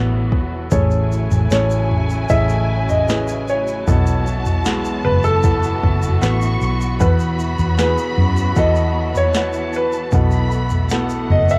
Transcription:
Already playing: fingered electric bass A1, steel-string acoustic guitar B2 B3 E4 A4, string section E3 F#3 B3 F#4, grand piano B3 E4 F#4 G#4 A4 B4
0.32 fingered electric bass E1, kick
0.71 fingered electric bass A1, string section C#3 A3 E4, steel-string acoustic guitar A3, grand piano C#4 E4 G#4 A4 C#5, violin section G#5, kick, floor tom, shaker
0.91 shaker
1.12 steel-string acoustic guitar E4, shaker
1.31 fingered electric bass A1, floor tom, shaker
1.51 fingered electric bass A1, grand piano C#4 E4 G#4 A4 C#5, steel-string acoustic guitar C#4, snare, shaker
1.70 shaker
1.91 floor tom
2.10 shaker
2.29 fingered electric bass A1, grand piano C#4 E4 G#4 A4 E5, steel-string acoustic guitar C#4 E4 G#4, kick, floor tom, shaker
2.49 shaker
2.89 grand piano D#5, floor tom, shaker
3.08 grand piano C#4 E4 G#4 B4, steel-string acoustic guitar C#4 E4 G#4, snare, shaker
3.28 shaker
3.48 grand piano C#5, shaker
3.68 shaker
3.86 fingered electric bass B1, steel-string acoustic guitar B2, string section E3 B3 F#4, grand piano B3 E4 F#4 A4, violin section A5, kick, floor tom, shaker
4.07 shaker
4.27 steel-string acoustic guitar E4, shaker
4.46 floor tom, shaker
4.65 grand piano G#3 B3 E4 F#4, steel-string acoustic guitar B3, snare, shaker
4.85 shaker
5.05 fingered electric bass F#1, grand piano B4, floor tom
5.23 grand piano A4, shaker
5.43 grand piano B3 E4 F#4 A4, steel-string acoustic guitar B3 E4 A4, kick, floor tom, shaker
5.63 shaker
5.83 fingered electric bass F#1, kick
6.02 floor tom, shaker
6.21 fingered electric bass A1, grand piano B3 E4 F#4 B4, steel-string acoustic guitar B3 E4 A4, violin section C#6, snare, shaker
6.41 shaker
6.61 fingered electric bass B1, shaker
6.81 shaker
7.00 fingered electric bass E2, grand piano B2 B3 E4 F#4 A4 B4, steel-string acoustic guitar E3, string section E3 F#3, violin section B5, kick, floor tom, shaker
7.08 grand piano B4
7.19 shaker
7.39 steel-string acoustic guitar E4, shaker
7.59 fingered electric bass E2, floor tom, shaker
7.78 grand piano B3 E4 F#4 G#4 B4, steel-string acoustic guitar B3, snare, shaker
7.98 shaker
8.18 fingered electric bass F#2, floor tom
8.37 shaker
8.56 fingered electric bass E2, grand piano B3 E4 F#4 A4 D#5, steel-string acoustic guitar B3 E4 B4, kick, floor tom, shaker
8.75 shaker
9.15 grand piano C#5, floor tom, shaker
9.34 steel-string acoustic guitar B3 E4 B4, grand piano B3 E4 F#4 B4, violin section A5, snare, shaker
9.53 shaker
9.73 grand piano B4, shaker
9.92 shaker
10.12 fingered electric bass B1, steel-string acoustic guitar B2, string section A3, grand piano B3 E4 F#4 A4, violin section B5, kick, floor tom, shaker
10.31 shaker
10.51 steel-string acoustic guitar E4, shaker
10.70 floor tom, shaker
10.90 grand piano B3 E4 F#4 A4, steel-string acoustic guitar B3, violin section F#5, snare, shaker
11.10 shaker
11.30 fingered electric bass F#1, grand piano D#5, floor tom
11.49 grand piano E5, shaker

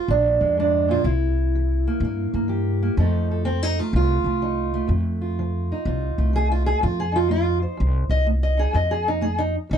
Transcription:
0.08 upright bass A#1, steel-string acoustic guitar A#2 D4
0.41 upright bass F2, steel-string acoustic guitar G#3
0.57 steel-string acoustic guitar G#2 D4
0.88 steel-string acoustic guitar A#2 F4
1.04 upright bass C2, steel-string acoustic guitar C3 E4
1.55 steel-string acoustic guitar E3
1.87 steel-string acoustic guitar A#3
2.00 upright bass G2, steel-string acoustic guitar G2
2.05 steel-string acoustic guitar A#3
2.34 upright bass G2, steel-string acoustic guitar A#3
2.48 steel-string acoustic guitar E3 G4
2.83 steel-string acoustic guitar A#3
2.97 upright bass F2, steel-string acoustic guitar F2 F3 A3 D#4 A4
3.31 steel-string acoustic guitar A4
3.45 steel-string acoustic guitar F3 C4
3.63 steel-string acoustic guitar D#4
3.79 steel-string acoustic guitar A3 F4
3.93 upright bass C2, steel-string acoustic guitar C3 F4
4.24 upright bass C2, steel-string acoustic guitar A3
4.42 steel-string acoustic guitar F3 D#4
4.74 steel-string acoustic guitar A3
4.87 steel-string acoustic guitar F2, upright bass F2
5.21 steel-string acoustic guitar F4
5.39 steel-string acoustic guitar F3
5.72 steel-string acoustic guitar D#4
5.85 upright bass C2, steel-string acoustic guitar C3 F4
6.18 upright bass C2, steel-string acoustic guitar A3
6.33 steel-string acoustic guitar F3 G#4
6.52 steel-string acoustic guitar F4
6.66 steel-string acoustic guitar G#4
6.81 steel-string acoustic guitar F2 F4, upright bass F2
7.00 steel-string acoustic guitar G#4
7.12 steel-string acoustic guitar D#4 F4
7.29 steel-string acoustic guitar A3 F4
7.62 steel-string acoustic guitar C5
7.77 upright bass C2, steel-string acoustic guitar F2
8.09 upright bass C2, steel-string acoustic guitar D#5
8.27 steel-string acoustic guitar A3
8.43 steel-string acoustic guitar D#5
8.57 steel-string acoustic guitar D#4 G#4
8.73 steel-string acoustic guitar F2 D#5, upright bass F2
8.91 steel-string acoustic guitar G#4
9.08 steel-string acoustic guitar D#4
9.21 steel-string acoustic guitar A3 G#4
9.38 steel-string acoustic guitar D#4
9.69 upright bass C2, steel-string acoustic guitar F2 D#4

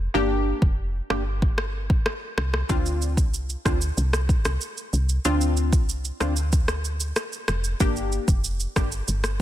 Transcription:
0.14 fm bass G1, synth stab A#3 D4 G4
0.62 fm bass F1, kick
1.10 fm bass G1, synth stab A#3 D4 G4, cross-stick
1.42 kick
1.58 cross-stick
1.90 kick
2.06 cross-stick
2.38 fm bass C2, cross-stick
2.54 cross-stick
2.69 fm bass D2, synth stab C4 D4 F4, kick, shaker
2.86 shaker
3.02 shaker
3.17 fm bass C2, kick, shaker
3.34 shaker
3.49 shaker
3.65 fm bass D2, synth stab C4 D4 F4, kick, cross-stick, shaker
3.81 shaker
3.97 fm bass C2, shaker
4.13 cross-stick, shaker
4.29 kick, shaker
4.45 fm bass C2, cross-stick, shaker
4.61 shaker
4.77 shaker
4.93 fm bass C2, shaker
5.09 shaker
5.25 fm bass D2, synth stab C4 D4 F4, shaker
5.41 shaker
5.57 shaker
5.73 fm bass C2, kick, shaker
5.89 shaker
6.05 shaker
6.20 fm bass D2, synth stab C4 D4 F4, cross-stick, shaker
6.36 shaker
6.53 kick, shaker
6.68 cross-stick, shaker
6.85 shaker
7.00 shaker
7.16 cross-stick, shaker
7.33 shaker
7.48 fm bass F1, cross-stick, shaker
7.64 shaker
7.80 fm bass G1, synth stab A#3 D4 G4, kick, shaker
7.96 shaker
8.12 shaker
8.28 fm bass F1, kick, shaker
8.44 shaker
8.60 shaker
8.76 fm bass G1, synth stab A#3 D4 G4, kick, cross-stick, shaker
8.92 shaker
9.08 fm bass G1, shaker
9.24 cross-stick, shaker

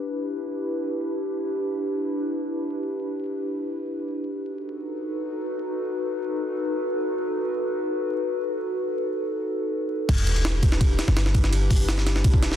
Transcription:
Already playing: ambient pad D4 E4 G4 B4
4.34 ambient pad D#4 F#4 A4 B4
10.09 808-style bass E1, ambient pad D4 E4 G4 B4, kick, crash, ride, sub drop
10.18 ride
10.27 ride
10.36 ride
10.45 snare, ride
10.63 kick, ride
10.72 snare
10.81 kick, ride
10.99 snare, ride
11.08 808-style bass G1, snare
11.17 snare, ride
11.26 snare
11.35 kick, ride
11.44 snare
11.53 ride
11.71 kick, open hi-hat
11.88 snare, ride
11.98 snare
12.06 snare, ride
12.16 snare
12.24 kick, ride
12.34 kick
12.42 808-style bass D1, snare, ride
12.52 snare

